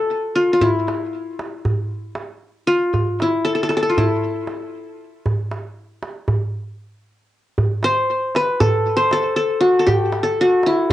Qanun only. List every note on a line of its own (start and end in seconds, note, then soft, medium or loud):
0.00 0.20 F4 medium
0.00 1.01 A4 medium
0.00 0.41 B4 medium
0.35 0.53 F4 medium
0.53 0.67 F4 medium
0.61 2.74 E4 medium
2.67 3.28 F4 medium
3.22 3.95 E4 medium
3.45 3.55 A4 medium
3.55 3.63 A4 medium
3.63 3.69 A4 medium
3.69 3.76 A4 medium
3.77 3.82 A4 medium
3.83 5.00 A4 medium
3.89 4.04 F4 medium
3.98 7.02 E4 medium
7.84 8.42 C5 loud
8.36 9.03 B4 loud
8.60 9.12 A4 loud
8.97 10.02 C5 loud
9.13 9.36 A4 loud
9.36 9.79 A4 medium
9.61 9.93 F#4 medium
9.79 10.23 A4 medium
9.87 10.47 G4 medium
10.23 10.93 A4 medium
10.41 10.90 F#4 medium
10.66 10.93 E4 medium